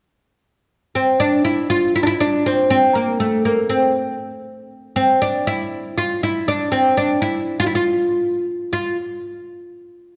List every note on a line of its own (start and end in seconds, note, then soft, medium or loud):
0.95 1.19 C4 medium
1.20 1.44 D4 medium
1.45 1.69 E4 medium
1.70 1.95 F4 medium
1.96 2.03 E4 medium
2.03 2.06 D4 medium
2.03 2.20 E4 medium
2.20 2.46 D4 medium
2.46 2.69 C4 medium
2.70 2.97 C4 medium
2.95 3.20 A#3 medium
3.20 3.45 A3 medium
3.45 3.69 A#3 medium
3.70 4.17 C4 medium
4.96 5.21 C4 medium
5.22 5.47 D4 medium
5.47 5.97 E4 medium
5.98 6.23 F4 medium
6.23 6.48 E4 medium
6.48 6.71 D4 medium
6.72 6.97 C4 medium
6.97 7.21 D4 medium
7.22 7.59 E4 medium
7.60 7.66 F4 medium
7.66 7.74 E4 medium
7.75 8.44 F4 medium
8.73 8.96 F4 medium